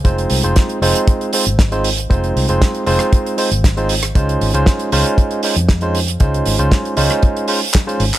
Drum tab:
HH |xxoxxxoxxxoxxxox|xxoxxxoxxxoxxxox|xxoxxxoxxxoxxxox|xxoxxxoxxxooxxox|
CP |----------------|----------------|----------------|------------x--x|
SD |----o-------o---|----o--r----o--r|----o-------o---|----o--r----o---|
BD |o---o---o---o---|o---o---o---o---|o---o---o---o---|o---o---o---o---|